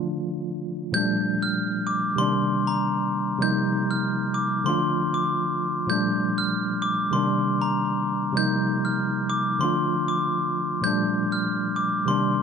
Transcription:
Already playing: tine electric piano D3 F3 A3 D4 F4
0.92 tine electric piano A#2 F3 G3 A3, glockenspiel G6
0.97 tine electric piano D4
1.42 glockenspiel F6
1.87 glockenspiel D6
2.16 tine electric piano C3 D#3 G3 A#3, glockenspiel C6
2.21 tine electric piano D4
2.67 glockenspiel A#5
3.38 tine electric piano C3 F3 G3 A#3
3.42 tine electric piano D#4, glockenspiel G6
3.91 glockenspiel F6
4.34 glockenspiel D6
4.64 tine electric piano D3 F3 A3, glockenspiel C6
4.68 tine electric piano D4 F4
5.14 glockenspiel D6
5.87 tine electric piano A#2 F3 G3, glockenspiel G6
5.91 tine electric piano A3 D4
6.38 glockenspiel F6
6.82 glockenspiel D6
7.11 tine electric piano C3 D#3 G3, glockenspiel C6
7.15 tine electric piano A#3 D4
7.62 glockenspiel A#5
8.33 tine electric piano C3 F3 G3
8.37 tine electric piano A#3 D#4, glockenspiel G6
8.85 glockenspiel F6
9.30 glockenspiel D6
9.59 tine electric piano D3 F3 A3, glockenspiel C6
9.63 tine electric piano D4 F4
10.08 glockenspiel D6
10.81 tine electric piano A#2 F3 G3, glockenspiel G6
10.85 tine electric piano A3 D4
11.32 glockenspiel F6
11.76 glockenspiel D6
12.05 tine electric piano C3 D#3 G3 A#3, glockenspiel C6
12.11 tine electric piano D4

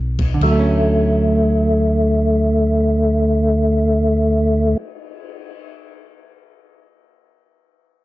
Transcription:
Already playing: tonewheel organ B1
0.19 kick, crash
0.34 hollow-body jazz guitar D3
0.41 tonewheel organ D2 A3, hollow-body jazz guitar F#3, kick, crash
0.52 hollow-body jazz guitar A3
0.59 hollow-body jazz guitar C#4
0.85 cymbal swell

